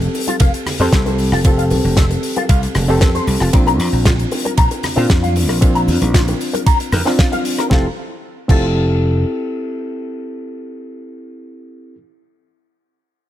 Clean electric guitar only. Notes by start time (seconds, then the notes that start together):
0.28 F4
0.40 F5
0.80 C5
0.93 C4
1.06 C5
1.32 F4
1.45 F4
1.58 F5
1.97 C4
2.36 F4
2.49 F5
2.89 C5
3.01 C4
3.15 C5
3.41 F4
3.54 A#4
3.67 A#5
4.05 F4
4.45 A#4
4.58 A#5
4.97 F5
5.09 F4
5.23 F5
5.49 A#4
5.61 A#4
5.75 A#5
6.14 F4
6.53 A#4
6.66 A#5
7.06 F5
7.19 F4
7.32 F5
7.58 A#4
7.71 F4
8.49 F4